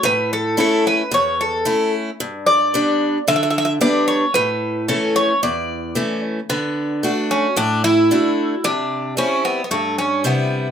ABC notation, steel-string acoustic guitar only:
X:1
M:4/4
L:1/8
Q:1/4=112
K:D
V:1 name="Steel-string acoustic guitar"
A,,2 [A,CE]2 E,,2 [A,CE]2 | G,,2 [G,B,D]2 D,2 [G,B,D]2 | A,,2 [E,A,C]2 E,,2 [E,A,C]2 | D,2 [A,DF]2 A,,2 [A,DF]2 |
=C,2 [G,=CE]2 G,,2 [C,G,E]2 |]